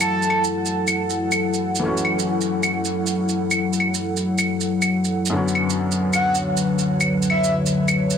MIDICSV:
0, 0, Header, 1, 5, 480
1, 0, Start_track
1, 0, Key_signature, 3, "minor"
1, 0, Tempo, 437956
1, 95, Time_signature, 4, 2, 24, 8
1, 8964, End_track
2, 0, Start_track
2, 0, Title_t, "Soft synth lead"
2, 0, Program_c, 0, 80
2, 5, Note_on_c, 0, 81, 89
2, 489, Note_off_c, 0, 81, 0
2, 6732, Note_on_c, 0, 78, 89
2, 6981, Note_off_c, 0, 78, 0
2, 8002, Note_on_c, 0, 76, 87
2, 8264, Note_off_c, 0, 76, 0
2, 8964, End_track
3, 0, Start_track
3, 0, Title_t, "Analog synth pad"
3, 0, Program_c, 1, 89
3, 0, Note_on_c, 1, 54, 78
3, 0, Note_on_c, 1, 64, 69
3, 0, Note_on_c, 1, 69, 70
3, 0, Note_on_c, 1, 78, 84
3, 5812, Note_off_c, 1, 64, 0
3, 5812, Note_off_c, 1, 78, 0
3, 5813, Note_off_c, 1, 69, 0
3, 5844, Note_on_c, 1, 50, 73
3, 5847, Note_on_c, 1, 71, 75
3, 5848, Note_on_c, 1, 73, 88
3, 8964, Note_off_c, 1, 50, 0
3, 8964, Note_off_c, 1, 54, 0
3, 8964, Note_off_c, 1, 71, 0
3, 8964, Note_off_c, 1, 73, 0
3, 8964, End_track
4, 0, Start_track
4, 0, Title_t, "Felt piano"
4, 0, Program_c, 2, 0
4, 0, Note_on_c, 2, 52, 69
4, 0, Note_on_c, 2, 57, 64
4, 0, Note_on_c, 2, 61, 62
4, 0, Note_on_c, 2, 66, 76
4, 1951, Note_off_c, 2, 52, 0
4, 1967, Note_on_c, 2, 52, 72
4, 1983, Note_off_c, 2, 57, 0
4, 1999, Note_on_c, 2, 57, 65
4, 2003, Note_off_c, 2, 61, 0
4, 2017, Note_off_c, 2, 66, 0
4, 2027, Note_on_c, 2, 61, 62
4, 2056, Note_on_c, 2, 66, 75
4, 5808, Note_on_c, 2, 42, 71
4, 5811, Note_off_c, 2, 52, 0
4, 5827, Note_off_c, 2, 57, 0
4, 5832, Note_on_c, 2, 50, 67
4, 5841, Note_off_c, 2, 61, 0
4, 5851, Note_on_c, 2, 59, 65
4, 5856, Note_off_c, 2, 66, 0
4, 5878, Note_on_c, 2, 61, 64
4, 5898, Note_on_c, 2, 66, 77
4, 8964, Note_off_c, 2, 42, 0
4, 8964, Note_off_c, 2, 50, 0
4, 8964, Note_off_c, 2, 59, 0
4, 8964, Note_off_c, 2, 61, 0
4, 8964, Note_off_c, 2, 66, 0
4, 8964, End_track
5, 0, Start_track
5, 0, Title_t, "Drums"
5, 8, Note_on_c, 9, 75, 50
5, 8, Note_on_c, 9, 82, 50
5, 118, Note_off_c, 9, 75, 0
5, 118, Note_off_c, 9, 82, 0
5, 246, Note_on_c, 9, 82, 28
5, 329, Note_on_c, 9, 75, 34
5, 356, Note_off_c, 9, 82, 0
5, 438, Note_off_c, 9, 75, 0
5, 484, Note_on_c, 9, 82, 52
5, 594, Note_off_c, 9, 82, 0
5, 722, Note_on_c, 9, 82, 40
5, 832, Note_off_c, 9, 82, 0
5, 961, Note_on_c, 9, 75, 46
5, 961, Note_on_c, 9, 82, 51
5, 1071, Note_off_c, 9, 75, 0
5, 1071, Note_off_c, 9, 82, 0
5, 1205, Note_on_c, 9, 82, 39
5, 1314, Note_off_c, 9, 82, 0
5, 1446, Note_on_c, 9, 75, 49
5, 1446, Note_on_c, 9, 82, 54
5, 1556, Note_off_c, 9, 75, 0
5, 1556, Note_off_c, 9, 82, 0
5, 1686, Note_on_c, 9, 82, 28
5, 1795, Note_off_c, 9, 82, 0
5, 1925, Note_on_c, 9, 82, 54
5, 2035, Note_off_c, 9, 82, 0
5, 2165, Note_on_c, 9, 82, 28
5, 2244, Note_on_c, 9, 75, 33
5, 2274, Note_off_c, 9, 82, 0
5, 2354, Note_off_c, 9, 75, 0
5, 2403, Note_on_c, 9, 82, 51
5, 2513, Note_off_c, 9, 82, 0
5, 2644, Note_on_c, 9, 82, 40
5, 2754, Note_off_c, 9, 82, 0
5, 2885, Note_on_c, 9, 75, 46
5, 2885, Note_on_c, 9, 82, 47
5, 2995, Note_off_c, 9, 75, 0
5, 2995, Note_off_c, 9, 82, 0
5, 3124, Note_on_c, 9, 82, 42
5, 3233, Note_off_c, 9, 82, 0
5, 3363, Note_on_c, 9, 82, 53
5, 3473, Note_off_c, 9, 82, 0
5, 3606, Note_on_c, 9, 82, 27
5, 3715, Note_off_c, 9, 82, 0
5, 3849, Note_on_c, 9, 75, 46
5, 3849, Note_on_c, 9, 82, 50
5, 3958, Note_off_c, 9, 75, 0
5, 3958, Note_off_c, 9, 82, 0
5, 4091, Note_on_c, 9, 82, 27
5, 4165, Note_on_c, 9, 75, 32
5, 4200, Note_off_c, 9, 82, 0
5, 4274, Note_off_c, 9, 75, 0
5, 4323, Note_on_c, 9, 82, 50
5, 4432, Note_off_c, 9, 82, 0
5, 4568, Note_on_c, 9, 82, 40
5, 4678, Note_off_c, 9, 82, 0
5, 4807, Note_on_c, 9, 75, 43
5, 4807, Note_on_c, 9, 82, 47
5, 4916, Note_off_c, 9, 75, 0
5, 4916, Note_off_c, 9, 82, 0
5, 5049, Note_on_c, 9, 82, 39
5, 5159, Note_off_c, 9, 82, 0
5, 5283, Note_on_c, 9, 75, 46
5, 5283, Note_on_c, 9, 82, 49
5, 5393, Note_off_c, 9, 75, 0
5, 5393, Note_off_c, 9, 82, 0
5, 5529, Note_on_c, 9, 82, 27
5, 5638, Note_off_c, 9, 82, 0
5, 5766, Note_on_c, 9, 82, 51
5, 5875, Note_off_c, 9, 82, 0
5, 6007, Note_on_c, 9, 82, 27
5, 6084, Note_on_c, 9, 75, 32
5, 6117, Note_off_c, 9, 82, 0
5, 6193, Note_off_c, 9, 75, 0
5, 6246, Note_on_c, 9, 82, 49
5, 6355, Note_off_c, 9, 82, 0
5, 6485, Note_on_c, 9, 82, 39
5, 6595, Note_off_c, 9, 82, 0
5, 6723, Note_on_c, 9, 75, 42
5, 6723, Note_on_c, 9, 82, 46
5, 6832, Note_off_c, 9, 75, 0
5, 6832, Note_off_c, 9, 82, 0
5, 6960, Note_on_c, 9, 82, 39
5, 7069, Note_off_c, 9, 82, 0
5, 7202, Note_on_c, 9, 82, 49
5, 7311, Note_off_c, 9, 82, 0
5, 7440, Note_on_c, 9, 82, 26
5, 7549, Note_off_c, 9, 82, 0
5, 7678, Note_on_c, 9, 75, 47
5, 7678, Note_on_c, 9, 82, 50
5, 7788, Note_off_c, 9, 75, 0
5, 7788, Note_off_c, 9, 82, 0
5, 7918, Note_on_c, 9, 82, 28
5, 7999, Note_on_c, 9, 75, 32
5, 8027, Note_off_c, 9, 82, 0
5, 8109, Note_off_c, 9, 75, 0
5, 8156, Note_on_c, 9, 82, 50
5, 8266, Note_off_c, 9, 82, 0
5, 8399, Note_on_c, 9, 82, 39
5, 8509, Note_off_c, 9, 82, 0
5, 8639, Note_on_c, 9, 75, 44
5, 8639, Note_on_c, 9, 82, 46
5, 8748, Note_off_c, 9, 75, 0
5, 8748, Note_off_c, 9, 82, 0
5, 8884, Note_on_c, 9, 82, 38
5, 8964, Note_off_c, 9, 82, 0
5, 8964, End_track
0, 0, End_of_file